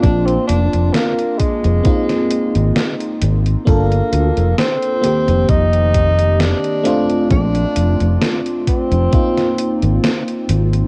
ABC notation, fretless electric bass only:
X:1
M:4/4
L:1/16
Q:"Swing 16ths" 1/4=66
K:Bb
V:1 name="Fretless electric bass" clef=bass
B,,, z F,,, F,,, z3 F,,, z3 _A,,, z2 A,,, z | G,,, z D,, F,,, z3 F,,, F,,,4- F,,, z3 | B,,, z F,,, F,,, z3 F,,, z3 _A,,, z2 A,,, z |]